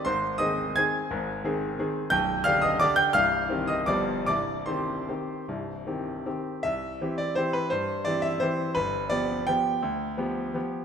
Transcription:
<<
  \new Staff \with { instrumentName = "Grand piano" } { \time 3/4 \key c \minor \tempo 4 = 168 <c'' c'''>4 <ees'' ees'''>4 <aes'' aes'''>4~ | <aes'' aes'''>2~ <aes'' aes'''>8 r8 | <g'' g'''>4 <f'' f'''>8 <ees'' ees'''>8 <d'' d'''>8 <g'' g'''>8 | <f'' f'''>4. <ees'' ees'''>8 <d'' d'''>4 |
<d'' d'''>4 <c'' c'''>2~ | <c'' c'''>2~ <c'' c'''>8 r8 | \key c \major e''4. d''8 c''8 b'8 | c''4 d''8 e''8 c''4 |
b'4 d''4 g''4~ | g''2~ g''8 r8 | }
  \new Staff \with { instrumentName = "Grand piano" } { \time 3/4 \key c \minor <aes,, aes,>4 <ees c' aes'>4 <ees c' aes'>4 | <aes,, aes,>4 <ees c' aes'>4 <ees c' aes'>4 | <b,,, b,,>4 <d d' g'>4 <d d' g'>4 | <c,, c,>4 <ees c' g'>4 <g,, g, f b g'>4 |
<c,, c,>4 <ees c' g'>4 <ees c' g'>4 | <c,, c,>4 <ees c' g'>4 <ees c' g'>4 | \key c \major c,4 <e c' g'>4 <e c' g'>4 | g,4 <e c' g'>4 <e c' g'>4 |
g,,4 <f b g'>4 <f b g'>4 | d,4 <f b g'>4 <f b g'>4 | }
>>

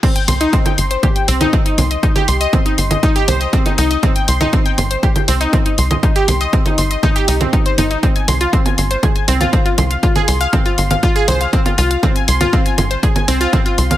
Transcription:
<<
  \new Staff \with { instrumentName = "Synth pluck" } { \time 4/4 \key c \minor \tempo 4 = 120 c'16 g''16 c'''16 ees'16 c'16 g''16 c'''16 c''16 g'16 g''16 c'16 ees'16 c'16 ees'16 c'''16 ees''16 | ees'16 g'16 c'''16 ees''16 c'16 ees'16 c'''16 ees''16 ees'16 g'16 c''16 ees''16 c'16 ees'16 ees'16 ees''16 | c'16 g''16 c'''16 ees'16 c'16 g''16 c'''16 c''16 g'16 g''16 c'16 ees'16 c'16 ees'16 c'''16 ees''16 | ees'16 g'16 c'''16 ees''16 c'16 ees'16 c'''16 ees''16 ees'16 g'16 ees'16 c'16 ees'16 c''16 ees'16 ees'16 |
c'16 aes''16 c'''16 f'16 c'16 aes''16 c'''16 c''16 aes'16 aes''16 c'16 f'16 c'16 f'16 c'''16 f''16 | f'16 aes'16 c'''16 f''16 c'16 f'16 c'''16 f''16 f'16 aes'16 c''16 f''16 c'16 f'16 f'16 f''16 | c'16 aes''16 c'''16 f'16 c'16 aes''16 c'''16 c''16 aes'16 aes''16 c'16 f'16 c'16 f'16 c'''16 f''16 | }
  \new Staff \with { instrumentName = "Analog synth bass" } { \clef bass \time 4/4 \key c \minor r8 c,8 r8 g,,8 r8 c,8 r8 c,8 | r8 c,8 r8 g,,8 r8 c,8 r8 c,8 | r8 c,8 r8 g,,8 r8 c,8 r8 c,8 | r8 c,8 r8 g,,8 r8 c,8 r8 g,,8 |
r8 c,8 r8 g,,8 r8 c,8 r8 c,8 | r8 c,8 r8 g,,8 r8 c,8 r8 c,8 | r8 c,8 r8 g,,8 r8 c,8 r8 c,8 | }
  \new DrumStaff \with { instrumentName = "Drums" } \drummode { \time 4/4 <cymc hh bd>16 hh16 <cgl hho>16 hh16 <hh bd>16 <cgl hh>16 hho16 hh16 <cgl hh bd>16 hh16 hho16 <cgl hh>16 <hh bd>16 hh16 <cgl hho>16 hh16 | <hh bd>16 <cgl hh>16 hho16 hh16 <cgl hh bd>16 hh16 hho16 <cgl hh>16 <hh bd>16 hh16 <cgl hho>16 hh16 <hh bd>16 <cgl hh>16 hho16 hh16 | <cgl hh bd>16 hh16 hho16 <cgl hh>16 <hh bd>16 hh16 <cgl hho>16 hh16 <hh bd>16 <cgl hh>16 hho16 hh16 <cgl hh bd>16 hh16 hho16 <cgl hh>16 | <hh bd>16 hh16 <cgl hho>16 hh16 <hh bd>16 <cgl hh>16 hho16 hh16 <cgl hh bd>16 hh16 hho16 <cgl hh>16 <hh bd>16 hh16 <cgl hho>16 hh16 |
<hh bd>16 hh16 <cgl hho>16 hh16 <hh bd>16 <cgl hh>16 hho16 hh16 <cgl hh bd>16 hh16 hho16 <cgl hh>16 <hh bd>16 hh16 <cgl hho>16 hh16 | <hh bd>16 <cgl hh>16 hho16 hh16 <cgl hh bd>16 hh16 hho16 <cgl hh>16 <hh bd>16 hh16 <cgl hho>16 hh16 <hh bd>16 <cgl hh>16 hho16 hh16 | <cgl hh bd>16 hh16 hho16 <cgl hh>16 <hh bd>16 hh16 <cgl hho>16 hh16 <hh bd>16 <cgl hh>16 hho16 hh16 <cgl hh bd>16 hh16 hho16 <cgl hh>16 | }
>>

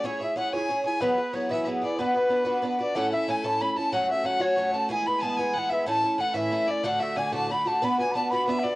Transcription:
<<
  \new Staff \with { instrumentName = "Fiddle" } { \time 6/8 \key b \dorian \tempo 4. = 123 cis''8 e''8 fis''8 gis''4 gis''8 | b'4 cis''8 e''8 r8 d''8 | b'2~ b'8 d''8 | fis''16. fis''32 e''8 gis''8 a''8 b''8 a''8 |
fis''8 e''8 fis''8 cis''4 a''8 | gis''8 b''16. gis''32 a''8 gis''8 fis''8 e''8 | a''4 fis''8 e''4 d''8 | fis''8 e''8 gis''8 a''8 b''8 a''8 |
b''8 gis''8 a''8 b''8 e''8 d''8 | }
  \new Staff \with { instrumentName = "Flute" } { \time 6/8 \key b \dorian cis''8 e''8 fis''8 gis''4 gis''8 | b'4 cis''8 e''8 r8 d''8 | b'2~ b'8 d''8 | fis''8 e''8 gis''8 a''8 b''8 a''8 |
fis''8 e''8 fis''8 cis''4 a''8 | gis''8 b''8 a''8 gis''8 fis''8 e''8 | a''4 fis''8 e''4 d''8 | fis''8 e''8 gis''8 a''8 b''8 a''8 |
b''8 gis''16. b''32 a''8 b''8.~ b''32 e''32 d''8 | }
  \new Staff \with { instrumentName = "Twelve-string acoustic guitar" } { \time 6/8 \key b \dorian <cis' e' gis' cis''>8 <e' gis' cis''>8 <cis' e' gis' cis''>8 <cis' e' gis' cis''>8 <cis' e' gis' cis''>8 <e' gis' cis''>8 | <e fis b e' gis'>8 <e' gis'>8 <fis b e' gis'>8 <e fis b e' gis'>8 <fis b e' gis'>8 <b e' gis'>8 | <b d' fis' b'>8 <d' fis' b'>8 <b d' fis' b'>8 <b d' fis' b'>8 <b d' fis' b'>8 <d' fis' b'>8 | <a, a cis' e' a'>8 <cis' e' a'>8 <a cis' e' a'>8 <a, a cis' e' a'>8 <a cis' e' a'>8 <cis' e' a'>8 |
<fis a cis' fis'>8 <a cis' fis'>8 <fis a cis' fis'>8 <fis a cis' fis'>8 <fis a cis' fis'>8 <a cis' fis'>8 | <e gis b e'>8 <gis b e'>8 <e gis b e'>8 <e gis b e'>8 <e gis b e'>8 <gis b e'>8 | <a, e a cis' e'>8 <a cis' e'>8 <e a cis' e'>8 <a, e a cis' e'>8 <e a cis' e'>8 <a cis' e'>8 | <d, a, d a d' fis'>8 <d a d' fis'>8 <d a d' fis'>8 <d, a, d a d' fis'>8 <d a d' fis'>8 <d a d' fis'>8 |
<b d' fis' b'>8 <d' fis' b'>8 <b d' fis' b'>8 <b d' fis' b'>8 <b d' fis' b'>8 <d' fis' b'>8 | }
>>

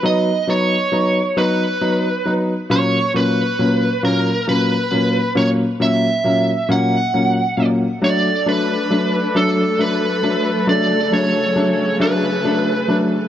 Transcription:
<<
  \new Staff \with { instrumentName = "Lead electric guitar" } { \time 6/8 \key fis \mixolydian \tempo 4. = 45 dis''8 cis''4 b'4 r8 | cis''8 b'4 ais'8 b'4 | cis''8 e''4 fis''4 r8 | d''8 b'4 a'8 b'4 |
d''8 cis''4 b'4 r8 | }
  \new Staff \with { instrumentName = "Grand piano" } { \time 6/8 \key fis \mixolydian <fis b dis'>8 <fis b dis'>8 <fis b dis'>8 <fis b dis'>8 <fis b dis'>8 <fis b dis'>8 | <ais, fis ais cis'>8 <ais, fis ais cis'>8 <ais, fis ais cis'>8 <ais, fis ais cis'>8 <ais, fis ais cis'>8 <ais, fis ais cis'>8 | <ais, fis ais cis'>8 <ais, fis ais cis'>8 <ais, fis ais cis'>8 <ais, fis ais cis'>8 <ais, fis ais cis'>8 <ais, fis ais cis'>8 | <fis a d'>8 <fis a d'>8 <fis a d'>8 <fis a d'>8 <fis a d'>8 <fis a d'>8 |
<fis a d'>8 <fis a d'>8 <fis a d'>8 <fis a d'>8 <fis a d'>8 <fis a d'>8 | }
  \new Staff \with { instrumentName = "String section" } { \time 6/8 \key fis \mixolydian << { r2. | r2. | r2. | <fis a a'>2.~ |
<fis a a'>2. | } \\ { r2. | r2. | r2. | d'2. |
cis2. | } >> }
>>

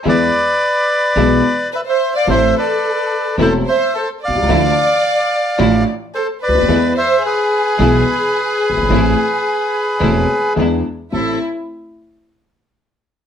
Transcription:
<<
  \new Staff \with { instrumentName = "Bandoneon" } { \time 4/4 \key a \minor \tempo 4 = 109 <b' d''>2. <b' e''>16 <c'' e''>8 <d'' f''>16 | <c'' e''>8 <b' d''>4. <a' c''>8 <c'' e''>8 <a' c''>8 <d'' f''>8~ | <d'' f''>2~ <d'' f''>8 r8 <a' c''>8 <b' d''>8~ | <b' d''>8 <c'' e''>8 <gis' b'>2.~ |
<gis' b'>2. r4 | a'8 r2. r8 | }
  \new Staff \with { instrumentName = "Violin section" } { \time 4/4 \key a \minor r2. b'16 c''8 d''16 | c''8 a'4. a'8 c''8 a'8 d''8~ | d''2~ d''8 r8 a'8 b'8~ | b'8 c''8 gis'2.~ |
gis'2. r4 | e'8 r2. r8 | }
  \new Staff \with { instrumentName = "String section" } { \time 4/4 \key a \minor <gis b e'>8 r4. <gis b e'>8 r4. | <a c' e'>8 r4. <a c' e'>8 r4. | <f d' e'>8 r4. <f d' e'>8 r4. | <gis b e'>8 r4. <gis b e'>8 r4. |
<a c' e'>8 r4. <a c' e'>8 r8 <gis d' e'>8 r8 | <a c' e'>8 r2. r8 | }
  \new Staff \with { instrumentName = "Upright piano" } { \clef bass \time 4/4 \key a \minor <e, e gis b gis'>8 r4. <b,, b, e gis b gis'>8 r4. | <a,, a, e a c' a'>8 r4. <e,, e, e a c' a'>8 r4 r32 b,,32 c,32 cis,32 | <d, d e a d' f'>8 r4. <a,, a, e a d' f'>8 r4 r32 cis,32 d,32 dis,32 | <e, e gis b gis'>8 r4. <b,, b, e gis b gis'>8 r4 r32 fis,,32 g,,32 gis,,32 |
<a,, a, e a c' a'>8 r4. <e,, e, e a c' a'>8 r8 <e, e b d' gis'>8 r8 | <a,, c' e' a'>8 r2. r8 | }
  \new Staff \with { instrumentName = "Upright bass" } { \clef bass \time 4/4 \key a \minor e,16. r4. r32 b,,16. r4. r32 | a,,16. r4. r32 e,,16. r4 r16 b,,32 c,32 cis,32 | d,16. r4. r32 a,,16. r4 r16 cis,32 d,32 dis,32 | e,16. r4. r32 b,,16. r4 r16 fis,,32 g,,32 gis,,32 |
a,,16. r4. r32 e,,16. r8 r32 e,16. r8 r32 | a,,8 r2. r8 | }
>>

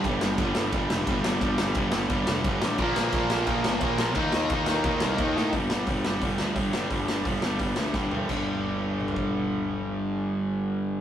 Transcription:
<<
  \new Staff \with { instrumentName = "Distorted electric guitar" } { \clef bass \time 4/4 \key g \minor \tempo 4 = 174 r1 | r1 | <bes, f bes>1 | <ees bes ees'>1 |
r1 | r1 | r1 | r1 | }
  \new Staff \with { instrumentName = "Distorted electric guitar" } { \clef bass \time 4/4 \key g \minor <g, d g>4 <g, d g>8 <g, d g>8 <g, d g>4 <g, d g>8 <g, d g>8 | <g, d g>4 <g, d g>8 <g, d g>8 <g, d g>4 <g, d g>8 <g, d g>8 | <bes, f bes>4 <bes, f bes>8 <bes, f bes>8 <bes, f bes>4 <bes, f bes>8 <bes, f bes>8 | <ees bes ees'>4 <ees bes ees'>8 <ees bes ees'>8 <ees bes ees'>4 <ees bes ees'>8 <ees bes ees'>8 |
<g, d g>8 <g, d g>8 <g, d g>8 <g, d g>8 <g, d g>8 <g, d g>8 <g, d g>8 <g, d g>8 | <g, d g>8 <g, d g>8 <g, d g>8 <g, d g>8 <g, d g>8 <g, d g>8 <g, d g>8 <g, d g>8 | <g, d g>1~ | <g, d g>1 | }
  \new Staff \with { instrumentName = "Overdriven electric guitar" } { \clef bass \time 4/4 \key g \minor <g, d g>4 <g, d g>8 <g, d g>8 <g, d g>4 <g, d g>8 <g, d g>8 | <g, d g>4 <g, d g>8 <g, d g>8 <g, d g>4 <g, d g>8 <g, d g>8 | <bes, f bes>4 <bes, f bes>8 <bes, f bes>8 <bes, f bes>4 <bes, f bes>8 <bes, f bes>8 | <ees bes ees'>4 <ees bes ees'>8 <ees bes ees'>8 <ees bes ees'>4 <ees bes ees'>8 <ees bes ees'>8 |
<g, d g>8 <g, d g>8 <g, d g>8 <g, d g>8 <g, d g>8 <g, d g>8 <g, d g>8 <g, d g>8 | <g, d g>8 <g, d g>8 <g, d g>8 <g, d g>8 <g, d g>8 <g, d g>8 <g, d g>8 <g, d g>8 | <g, d g>1~ | <g, d g>1 | }
  \new Staff \with { instrumentName = "Picked electric bass" } { \clef bass \time 4/4 \key g \minor g,,8 g,,8 g,,4 g,,8 f,,8 g,,8 g,,8 | g,,8 g,,8 g,,4 g,,8 f,,8 g,,8 a,,8 | bes,,8 bes,,8 bes,,4 bes,,8 g,,8 bes,,8 bes,,8 | ees,8 ees,8 ees,4 ees,8 c,8 ees,8 a,8 |
g,,8 g,,8 g,,8 g,,8 g,,8 d,8 g,4 | g,,8 g,,8 g,,8 g,,8 g,,8 d,8 g,4 | g,,1~ | g,,1 | }
  \new DrumStaff \with { instrumentName = "Drums" } \drummode { \time 4/4 <cymc bd>8 sn8 <cymc bd>8 sn8 <cymc bd>8 sn8 <cymc bd>8 sn8 | <cymc bd>8 sn8 <cymc bd>8 sn8 <cymc bd>8 sn8 <cymc bd>8 sn8 | <cymc bd>8 sn8 <cymc bd>8 sn8 <cymc bd>8 sn8 <cymc bd>8 sn8 | <cymc bd>8 sn8 <cymc bd>8 sn8 <cymc bd>8 sn8 <cymc bd>8 sn8 |
<hho bd>8 sn8 <hho bd>8 sn8 <hho bd>8 sn8 <hho bd>8 sn8 | <hho bd>8 sn8 <hho bd>8 sn8 <hho bd>8 sn8 <bd sn>8 tomfh8 | <cymc bd>4 r4 toml16 tomfh16 bd8 r4 | r4 r4 r4 r4 | }
>>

